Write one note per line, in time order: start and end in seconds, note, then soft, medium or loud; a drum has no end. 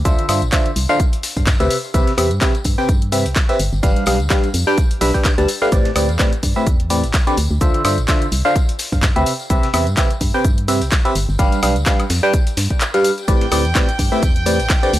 0.05 0.16 D2 medium
0.05 0.26 D3 medium
0.05 0.26 D4 medium
0.05 0.26 F4 medium
0.05 0.26 C5 medium
0.05 0.26 E5 medium
0.05 kick loud
0.05 closed hi-hat medium
0.05 tambourine medium
0.05 shaker medium
0.19 closed hi-hat soft
0.29 0.44 G2 medium
0.29 0.41 D3 medium
0.29 0.41 D4 medium
0.29 0.41 F4 medium
0.29 0.41 C5 medium
0.29 0.41 E5 medium
0.29 open hi-hat loud
0.29 tambourine loud
0.29 high woodblock medium
0.29 shaker medium
0.42 0.51 A1 medium
0.42 closed hi-hat soft
0.42 tambourine soft
0.52 0.71 D3 medium
0.52 0.71 D4 medium
0.52 0.71 F4 medium
0.52 0.71 C5 medium
0.52 0.71 E5 medium
0.52 kick loud
0.52 snare loud
0.52 clap loud
0.52 closed hi-hat medium
0.52 tambourine medium
0.52 shaker medium
0.65 closed hi-hat medium
0.65 tambourine soft
0.76 0.87 C2 loud
0.76 open hi-hat medium
0.76 tambourine medium
0.76 shaker medium
0.89 0.99 D3 medium
0.89 0.99 D4 medium
0.89 0.99 F4 medium
0.89 0.99 C5 medium
0.89 0.99 F5 loud
0.89 tambourine soft
1.00 kick loud
1.00 closed hi-hat medium
1.00 tambourine soft
1.00 shaker medium
1.13 closed hi-hat medium
1.13 closed hi-hat soft
1.23 snare medium
1.23 open hi-hat loud
1.23 tambourine loud
1.23 shaker medium
1.37 1.56 G2 medium
1.37 kick medium
1.37 closed hi-hat soft
1.47 kick loud
1.47 snare loud
1.47 clap loud
1.47 closed hi-hat medium
1.47 tambourine medium
1.47 shaker medium
1.60 1.69 D2 medium
1.60 1.77 C3 medium
1.60 1.77 C4 medium
1.60 1.77 G4 medium
1.60 1.77 B4 medium
1.60 1.77 E5 medium
1.60 closed hi-hat soft
1.60 tambourine soft
1.70 open hi-hat medium
1.70 tambourine medium
1.70 shaker medium
1.84 tambourine soft
1.94 2.05 C2 loud
1.94 2.12 C3 medium
1.94 2.12 C4 medium
1.94 2.12 G4 medium
1.94 2.12 B4 medium
1.94 2.12 E5 loud
1.94 kick loud
1.94 closed hi-hat medium
1.94 tambourine medium
1.94 shaker medium
2.07 snare soft
2.07 closed hi-hat soft
2.18 2.33 E2 medium
2.18 2.30 C3 medium
2.18 2.30 C4 medium
2.18 2.30 G4 medium
2.18 2.30 B4 medium
2.18 2.30 E5 medium
2.18 open hi-hat loud
2.18 tambourine medium
2.18 high woodblock medium
2.18 shaker medium
2.31 2.40 G2 medium
2.31 closed hi-hat soft
2.31 tambourine soft
2.41 2.54 C3 medium
2.41 2.54 C4 medium
2.41 2.54 G4 medium
2.41 2.54 B4 medium
2.41 2.54 E5 medium
2.41 kick loud
2.41 snare loud
2.41 clap loud
2.41 closed hi-hat medium
2.41 tambourine medium
2.41 shaker medium
2.55 closed hi-hat soft
2.55 tambourine soft
2.64 2.76 G2 loud
2.64 kick medium
2.64 open hi-hat medium
2.64 tambourine medium
2.64 shaker medium
2.78 2.88 C3 medium
2.78 2.88 C4 medium
2.78 2.88 G4 medium
2.78 2.88 B4 medium
2.78 2.88 G5 loud
2.78 tambourine soft
2.89 3.27 G2 medium
2.89 kick loud
2.89 closed hi-hat medium
2.89 tambourine medium
2.89 shaker medium
3.02 closed hi-hat soft
3.12 3.25 C3 medium
3.12 3.25 C4 medium
3.12 3.25 G4 medium
3.12 3.25 B4 medium
3.12 3.25 E5 medium
3.12 open hi-hat loud
3.12 tambourine loud
3.12 shaker medium
3.25 3.34 C2 medium
3.25 closed hi-hat soft
3.25 tambourine soft
3.36 kick loud
3.36 snare loud
3.36 clap loud
3.36 closed hi-hat medium
3.36 tambourine medium
3.36 shaker medium
3.49 3.58 C4 medium
3.49 3.58 G4 medium
3.49 3.58 B4 medium
3.49 3.58 E5 loud
3.49 closed hi-hat soft
3.49 tambourine soft
3.59 3.71 G1 loud
3.59 open hi-hat medium
3.59 tambourine medium
3.59 shaker medium
3.72 3.81 G1 loud
3.72 tambourine soft
3.83 3.94 G1 loud
3.83 4.04 G3 medium
3.83 4.04 D4 medium
3.83 4.04 G4 medium
3.83 4.04 B4 medium
3.83 4.04 F5 loud
3.83 kick loud
3.83 closed hi-hat medium
3.83 tambourine medium
3.83 shaker medium
3.96 closed hi-hat soft
4.06 4.22 B1 medium
4.06 4.19 G3 medium
4.06 4.19 D4 medium
4.06 4.19 G4 medium
4.06 4.19 B4 medium
4.06 4.19 F5 medium
4.06 open hi-hat loud
4.06 tambourine medium
4.06 high woodblock medium
4.06 shaker medium
4.20 4.29 D2 medium
4.20 closed hi-hat soft
4.20 tambourine soft
4.30 4.49 G3 medium
4.30 4.49 D4 medium
4.30 4.49 G4 medium
4.30 4.49 B4 medium
4.30 4.49 F5 medium
4.30 kick loud
4.30 snare loud
4.30 clap loud
4.30 closed hi-hat medium
4.30 tambourine medium
4.30 shaker medium
4.43 closed hi-hat soft
4.43 tambourine soft
4.54 4.65 F2 loud
4.54 open hi-hat medium
4.54 tambourine loud
4.54 shaker medium
4.67 4.77 G3 loud
4.67 4.77 D4 medium
4.67 4.77 G4 medium
4.67 4.77 B4 medium
4.67 4.77 G5 loud
4.67 tambourine soft
4.78 kick loud
4.78 closed hi-hat medium
4.78 tambourine medium
4.78 shaker medium
4.91 closed hi-hat soft
5.01 5.12 B1 loud
5.01 5.11 G3 loud
5.01 5.11 D4 medium
5.01 5.11 G4 medium
5.01 5.11 B4 medium
5.01 5.11 E5 loud
5.01 snare medium
5.01 open hi-hat loud
5.01 tambourine medium
5.01 shaker medium
5.14 5.31 G3 medium
5.14 5.31 D4 medium
5.14 5.31 G4 medium
5.14 5.31 B4 medium
5.14 5.31 G5 medium
5.14 kick medium
5.14 closed hi-hat soft
5.14 tambourine soft
5.25 kick loud
5.25 snare loud
5.25 clap loud
5.25 closed hi-hat medium
5.25 tambourine medium
5.25 shaker medium
5.38 5.47 D2 loud
5.38 5.48 G3 medium
5.38 5.48 D4 medium
5.38 5.48 G4 medium
5.38 5.48 B4 medium
5.38 5.48 A5 medium
5.38 closed hi-hat soft
5.38 tambourine soft
5.48 open hi-hat medium
5.48 tambourine medium
5.48 shaker medium
5.62 5.70 A3 medium
5.62 5.70 D4 medium
5.62 5.70 G4 medium
5.62 5.70 B4 medium
5.62 5.70 F5 loud
5.62 tambourine soft
5.72 5.83 A1 loud
5.72 5.90 A2 medium
5.72 5.90 C4 medium
5.72 5.90 G4 medium
5.72 5.90 B4 medium
5.72 5.90 D5 medium
5.72 kick loud
5.72 closed hi-hat medium
5.72 tambourine soft
5.72 shaker medium
5.85 snare soft
5.85 closed hi-hat soft
5.96 6.10 D2 medium
5.96 6.08 A2 medium
5.96 6.08 C4 medium
5.96 6.08 G4 medium
5.96 6.08 B4 medium
5.96 6.08 D5 medium
5.96 open hi-hat loud
5.96 tambourine medium
5.96 high woodblock medium
5.96 shaker medium
6.09 6.18 E2 loud
6.09 closed hi-hat soft
6.09 tambourine soft
6.19 6.32 A2 medium
6.19 6.32 C4 medium
6.19 6.32 G4 medium
6.19 6.32 B4 medium
6.19 6.32 D5 medium
6.19 kick loud
6.19 snare loud
6.19 clap loud
6.19 closed hi-hat medium
6.19 tambourine soft
6.19 shaker medium
6.33 closed hi-hat soft
6.33 tambourine soft
6.43 6.54 G2 loud
6.43 kick medium
6.43 open hi-hat medium
6.43 tambourine medium
6.43 shaker medium
6.56 6.66 A2 medium
6.56 6.66 C4 medium
6.56 6.66 G4 medium
6.56 6.66 B4 medium
6.56 6.66 E5 loud
6.56 tambourine soft
6.66 7.05 E2 medium
6.66 kick loud
6.66 closed hi-hat medium
6.66 tambourine soft
6.66 shaker medium
6.80 closed hi-hat soft
6.90 7.03 A2 medium
6.90 7.03 C4 medium
6.90 7.03 G4 medium
6.90 7.03 B4 medium
6.90 7.03 D5 medium
6.90 open hi-hat loud
6.90 tambourine medium
6.90 shaker medium
7.03 7.12 A1 medium
7.03 closed hi-hat soft
7.03 tambourine soft
7.14 kick loud
7.14 snare loud
7.14 clap loud
7.14 closed hi-hat medium
7.14 tambourine medium
7.14 shaker medium
7.27 7.36 D3 medium
7.27 7.36 C4 medium
7.27 7.36 G4 medium
7.27 7.36 B4 medium
7.27 7.36 D5 loud
7.27 closed hi-hat soft
7.27 tambourine soft
7.37 7.48 D2 loud
7.37 open hi-hat medium
7.37 tambourine medium
7.37 shaker medium
7.51 7.59 D2 loud
7.51 tambourine soft
7.61 7.72 D2 loud
7.61 7.82 D3 medium
7.61 7.82 D4 medium
7.61 7.82 F4 medium
7.61 7.82 C5 medium
7.61 7.82 E5 loud
7.61 kick loud
7.61 closed hi-hat medium
7.61 tambourine soft
7.61 shaker medium
7.74 closed hi-hat soft
7.85 8.00 G2 medium
7.85 7.97 D3 medium
7.85 7.97 D4 medium
7.85 7.97 F4 medium
7.85 7.97 C5 medium
7.85 7.97 E5 medium
7.85 open hi-hat loud
7.85 tambourine medium
7.85 high woodblock medium
7.85 shaker medium
7.98 8.07 A1 medium
7.98 closed hi-hat soft
7.98 tambourine soft
8.08 8.27 D3 medium
8.08 8.27 D4 medium
8.08 8.27 F4 medium
8.08 8.27 C5 medium
8.08 8.27 E5 medium
8.08 kick loud
8.08 snare loud
8.08 clap loud
8.08 closed hi-hat medium
8.08 tambourine medium
8.08 shaker medium
8.22 closed hi-hat soft
8.22 tambourine soft
8.32 8.43 C2 loud
8.32 open hi-hat medium
8.32 tambourine medium
8.32 shaker medium
8.45 8.55 D3 loud
8.45 8.55 D4 medium
8.45 8.55 F4 medium
8.45 8.55 C5 medium
8.45 8.55 F5 loud
8.45 tambourine soft
8.56 kick loud
8.56 closed hi-hat medium
8.56 tambourine soft
8.56 shaker medium
8.69 closed hi-hat soft
8.79 snare medium
8.79 open hi-hat loud
8.79 tambourine medium
8.79 shaker medium
8.92 9.11 G2 medium
8.92 kick medium
8.92 closed hi-hat soft
8.92 tambourine soft
9.03 kick loud
9.03 snare loud
9.03 clap loud
9.03 closed hi-hat medium
9.03 tambourine medium
9.03 shaker medium
9.16 9.25 D2 medium
9.16 9.33 C3 medium
9.16 9.33 C4 medium
9.16 9.33 G4 medium
9.16 9.33 B4 medium
9.16 9.33 E5 medium
9.16 closed hi-hat soft
9.16 tambourine soft
9.26 open hi-hat medium
9.26 tambourine medium
9.26 shaker medium
9.39 tambourine soft
9.50 9.61 C2 loud
9.50 9.68 C3 medium
9.50 9.68 C4 medium
9.50 9.68 G4 medium
9.50 9.68 B4 medium
9.50 9.68 E5 medium
9.50 kick loud
9.50 closed hi-hat medium
9.50 tambourine soft
9.50 shaker medium
9.63 snare soft
9.63 closed hi-hat medium
9.74 9.88 E2 medium
9.74 9.86 C3 medium
9.74 9.86 C4 medium
9.74 9.86 G4 medium
9.74 9.86 B4 medium
9.74 9.86 E5 medium
9.74 open hi-hat loud
9.74 tambourine medium
9.74 high woodblock medium
9.74 shaker medium
9.87 9.96 G2 medium
9.87 closed hi-hat soft
9.87 tambourine soft
9.97 10.10 C3 medium
9.97 10.10 C4 medium
9.97 10.10 G4 medium
9.97 10.10 B4 medium
9.97 10.10 E5 medium
9.97 kick loud
9.97 snare loud
9.97 clap loud
9.97 closed hi-hat medium
9.97 tambourine medium
9.97 shaker medium
10.10 closed hi-hat medium
10.10 tambourine soft
10.21 10.32 G2 loud
10.21 kick medium
10.21 open hi-hat medium
10.21 tambourine medium
10.21 shaker medium
10.34 10.44 C3 medium
10.34 10.44 C4 medium
10.34 10.44 G4 medium
10.34 10.44 B4 medium
10.34 10.44 G5 loud
10.34 tambourine soft
10.44 10.83 G2 medium
10.44 kick loud
10.44 closed hi-hat medium
10.44 tambourine soft
10.44 shaker medium
10.58 closed hi-hat medium
10.68 10.81 C3 medium
10.68 10.80 C4 medium
10.68 10.80 G4 medium
10.68 10.80 B4 medium
10.68 10.80 E5 medium
10.68 open hi-hat loud
10.68 tambourine medium
10.68 shaker medium
10.82 10.90 C2 medium
10.82 closed hi-hat soft
10.82 tambourine soft
10.92 kick loud
10.92 snare loud
10.92 clap loud
10.92 closed hi-hat medium
10.92 tambourine soft
10.92 shaker medium
11.05 11.14 C4 medium
11.05 11.14 G4 medium
11.05 11.14 B4 medium
11.05 11.14 E5 loud
11.05 closed hi-hat medium
11.05 tambourine soft
11.15 11.26 G1 loud
11.15 open hi-hat medium
11.15 tambourine medium
11.15 shaker medium
11.29 11.37 G1 loud
11.29 tambourine soft
11.39 11.50 G1 medium
11.39 11.60 G3 medium
11.39 11.60 D4 medium
11.39 11.60 G4 medium
11.39 11.60 B4 medium
11.39 11.60 F5 loud
11.39 kick loud
11.39 closed hi-hat medium
11.39 tambourine soft
11.39 shaker medium
11.52 closed hi-hat medium
11.52 tambourine soft
11.63 11.78 B1 medium
11.63 11.75 G3 medium
11.63 11.75 D4 medium
11.63 11.75 G4 medium
11.63 11.75 B4 medium
11.63 11.75 F5 medium
11.63 open hi-hat loud
11.63 tambourine medium
11.63 high woodblock medium
11.63 shaker medium
11.76 11.85 D2 medium
11.76 closed hi-hat soft
11.76 tambourine soft
11.86 12.05 G3 medium
11.86 12.05 D4 medium
11.86 12.05 G4 medium
11.86 12.05 B4 medium
11.86 12.05 F5 medium
11.86 kick loud
11.86 snare loud
11.86 clap loud
11.86 closed hi-hat medium
11.86 tambourine medium
11.86 shaker medium
12.00 closed hi-hat medium
12.00 tambourine soft
12.00 high woodblock medium
12.10 12.21 F2 loud
12.10 snare loud
12.10 open hi-hat medium
12.10 tambourine medium
12.10 shaker medium
12.23 12.33 G3 loud
12.23 12.33 D4 medium
12.23 12.33 G4 medium
12.23 12.33 B4 medium
12.23 12.33 G5 loud
12.23 closed hi-hat soft
12.23 tambourine soft
12.33 kick loud
12.33 closed hi-hat medium
12.33 tambourine soft
12.33 shaker medium
12.47 closed hi-hat medium
12.47 closed hi-hat soft
12.47 tambourine soft
12.57 12.68 G2 medium
12.57 snare loud
12.57 open hi-hat loud
12.57 tambourine loud
12.57 shaker medium
12.71 kick medium
12.81 clap loud
12.81 closed hi-hat medium
12.81 tambourine medium
12.81 shaker medium
12.94 13.11 G3 medium
12.94 13.11 D4 medium
12.94 13.11 G4 medium
12.94 13.11 B4 medium
12.94 13.11 F5 medium
12.94 closed hi-hat medium
12.94 tambourine soft
13.04 open hi-hat medium
13.04 tambourine medium
13.04 shaker medium
13.18 closed hi-hat soft
13.18 tambourine soft
13.28 13.39 A1 medium
13.28 13.46 A2 medium
13.28 13.46 C4 medium
13.28 13.46 G4 medium
13.28 13.46 B4 medium
13.28 13.46 D5 loud
13.28 14.99 G5 medium
13.28 14.99 G6 medium
13.28 kick loud
13.28 closed hi-hat medium
13.28 tambourine soft
13.28 shaker medium
13.41 snare soft
13.41 closed hi-hat medium
13.51 13.67 D2 medium
13.51 13.64 A2 medium
13.51 13.64 C4 medium
13.51 13.64 G4 medium
13.51 13.64 B4 medium
13.51 13.64 D5 medium
13.51 open hi-hat loud
13.51 tambourine loud
13.51 high woodblock medium
13.51 shaker medium
13.65 13.74 E2 medium
13.65 closed hi-hat soft
13.65 tambourine soft
13.75 13.87 A2 medium
13.75 13.87 C4 medium
13.75 13.87 G4 medium
13.75 13.87 B4 medium
13.75 13.87 D5 medium
13.75 kick loud
13.75 snare loud
13.75 clap loud
13.75 closed hi-hat medium
13.75 tambourine medium
13.75 shaker medium
13.89 closed hi-hat medium
13.89 tambourine soft
13.99 14.10 G2 loud
13.99 kick medium
13.99 open hi-hat medium
13.99 tambourine medium
13.99 shaker medium
14.12 14.22 A2 medium
14.12 14.22 C4 medium
14.12 14.22 G4 medium
14.12 14.22 B4 medium
14.12 14.22 E5 loud
14.12 tambourine soft
14.23 14.61 E2 medium
14.23 kick loud
14.23 closed hi-hat medium
14.23 tambourine medium
14.23 shaker medium
14.36 closed hi-hat medium
14.46 14.58 A2 medium
14.46 14.58 C4 medium
14.46 14.58 G4 medium
14.46 14.58 B4 medium
14.46 14.58 D5 medium
14.46 open hi-hat loud
14.46 tambourine medium
14.46 shaker medium
14.59 14.68 A1 medium
14.59 closed hi-hat soft
14.59 tambourine soft
14.70 kick loud
14.70 snare loud
14.70 clap loud
14.70 closed hi-hat medium
14.70 tambourine medium
14.70 shaker medium
14.83 14.92 D3 medium
14.83 14.92 C4 medium
14.83 14.92 G4 medium
14.83 14.92 B4 medium
14.83 14.92 D5 loud
14.83 closed hi-hat medium
14.83 tambourine soft
14.93 14.99 D2 loud
14.93 open hi-hat medium
14.93 tambourine medium
14.93 shaker medium